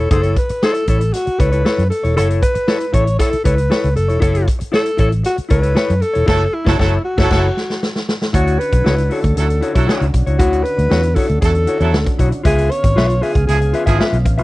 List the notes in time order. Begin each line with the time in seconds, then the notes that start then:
Already playing: A4
0.00 E4 A4 C#5
0.11 F#1 E4 A4 C#5, kick, closed hi-hat
0.23 closed hi-hat
0.36 B4, kick, closed hi-hat
0.49 muted fingered electric bass stroke, muted clean electric guitar stroke, closed hi-hat
0.63 E4 A4 C#5, snare
0.74 muted clean electric guitar stroke, closed hi-hat
0.87 A1 E4 A4 C#5, kick, closed hi-hat
1.01 muted clean electric guitar stroke, closed hi-hat
1.14 F#4, muted clean electric guitar stroke, snare, closed hi-hat
1.26 muted clean electric guitar stroke, muted fingered electric bass stroke, closed hi-hat
1.39 C#2 E4 A4 B4 C#5, kick, closed hi-hat
1.52 E4 A4 C#5, closed hi-hat
1.65 E4 A4 C#5, snare
1.78 F#2, closed hi-hat
1.90 A4, muted clean electric guitar stroke, closed hi-hat
2.03 E1 E4 A4 C#5, closed hi-hat
2.16 F#1 E4 A4 C#5, closed hi-hat
2.30 closed hi-hat
2.42 B4, kick, closed hi-hat
2.55 muted clean electric guitar stroke, muted fingered electric bass stroke, closed hi-hat
2.68 E4 A4 C#5, snare
2.80 muted clean electric guitar stroke, closed hi-hat
2.93 A1 E4 A4 C#5, kick, closed hi-hat
3.06 muted clean electric guitar stroke, closed hi-hat
3.19 E4 A4 C#5, kick, snare, closed hi-hat
3.32 muted clean electric guitar stroke, muted fingered electric bass stroke, closed hi-hat
3.44 C#2 E4 A4 B4 C#5, kick, closed hi-hat
3.57 muted clean electric guitar stroke, closed hi-hat
3.70 E4 A4 C#5, snare
3.84 C#2, closed hi-hat
3.95 F#1 A4, muted clean electric guitar stroke, closed hi-hat
4.08 E1 E4 A4 C#5, closed hi-hat
4.20 F#1 E4 A4 C#5, kick, closed hi-hat
4.35 closed hi-hat
4.48 kick, closed hi-hat
4.59 muted clean electric guitar stroke, muted fingered electric bass stroke, closed hi-hat
4.72 E4 A4 C#5, snare
4.85 muted clean electric guitar stroke, closed hi-hat
4.97 A1 E4 A4 C#5, kick, closed hi-hat
5.11 muted clean electric guitar stroke, closed hi-hat
5.23 F#4, muted clean electric guitar stroke, snare, closed hi-hat
5.36 muted clean electric guitar stroke, muted fingered electric bass stroke, closed hi-hat
5.49 C#2 E4 A4 B4 C#5, kick, closed hi-hat
5.62 E4 A4 C#5, closed hi-hat
5.75 E4 A4 C#5, snare
5.90 F#2, closed hi-hat
6.01 A4, muted clean electric guitar stroke, closed hi-hat
6.13 E1 E4 A4 C#5, closed hi-hat
6.26 F#1 F#3 E4 A4 C#5, kick, snare, crash
6.54 E4
6.65 F#1 F#3 E4 A4 C#5, kick, snare
6.78 F#1 F#3 E4 A4 C#5, kick, snare
7.05 F#4
7.17 F#1 E4 A4 C#5, kick, snare
7.22 F#3
7.30 F#1 F#3 E4 A4 C#5, kick, snare, crash
7.57 snare
7.70 snare
7.83 snare
7.96 snare
8.09 snare
8.22 snare
8.33 D2 D3 C#4 D4 E4 F#4 C#5, kick, closed hi-hat
8.47 closed hi-hat
8.59 B4, closed hi-hat
8.72 B1, muted clean electric guitar stroke, kick, closed hi-hat
8.84 C#2 E4 F#4 C#5, snare
8.98 muted clean electric guitar stroke, closed hi-hat
9.10 E4 F#4 A4 C#5, open hi-hat
9.23 D2, muted clean electric guitar stroke, kick, closed hi-hat
9.35 D2 F#3 E4 A4, muted clean electric guitar stroke, snare, closed hi-hat
9.48 muted clean electric guitar stroke, closed hi-hat
9.61 E4 F#4 C#5, closed hi-hat
9.75 B1 F#3 E4 F#4 A4 C#5, kick, closed hi-hat
9.87 E4 F#4 C#5, snare
10.01 C#2, closed hi-hat
10.14 B1, muted clean electric guitar stroke, kick, closed hi-hat
10.27 C#2 E4 F#4 C#5, closed hi-hat
10.38 D2 E4 F#4 C#5, kick, closed hi-hat
10.53 closed hi-hat
10.63 B4, closed hi-hat
10.77 D2, muted clean electric guitar stroke, closed hi-hat
10.90 E2 E4 F#4 C#5, snare
11.03 muted clean electric guitar stroke, closed hi-hat
11.15 E4 F#4 A4 C#5, kick, open hi-hat
11.29 D2, closed hi-hat
11.41 E2 F#3 E4 A4, muted clean electric guitar stroke, kick, snare, closed hi-hat
11.54 muted clean electric guitar stroke, closed hi-hat
11.67 E4 F#4 C#5, closed hi-hat
11.80 E2 F#3 E4 F#4 A4 C#5, closed hi-hat
11.93 D2, muted clean electric guitar stroke, snare
12.07 kick, closed hi-hat
12.19 B1 E4 F#4 C#5, kick, closed hi-hat
12.32 muted clean electric guitar stroke, closed hi-hat
12.43 C#2 B3 F4 G#4 B4 E5 F5, kick, closed hi-hat
12.58 closed hi-hat
12.71 C#5, closed hi-hat
12.83 G#1, muted clean electric guitar stroke, kick, closed hi-hat
12.96 B1 F4 B4 E5, snare
13.09 muted clean electric guitar stroke, closed hi-hat
13.21 F4 G#4 B4 E5, open hi-hat
13.34 C#2, muted clean electric guitar stroke, kick, closed hi-hat
13.47 C#2 F3 E4 G#4, muted clean electric guitar stroke, snare, closed hi-hat
13.61 muted clean electric guitar stroke, closed hi-hat
13.73 F4 B4 E5, closed hi-hat
13.86 G#1 F3 E4 F4 G#4 B4 E5, kick, closed hi-hat
13.99 F4 B4 E5, snare
14.13 B1, closed hi-hat
14.25 A1, muted clean electric guitar stroke, kick, closed hi-hat
14.38 B1 F4 B4 E5, closed hi-hat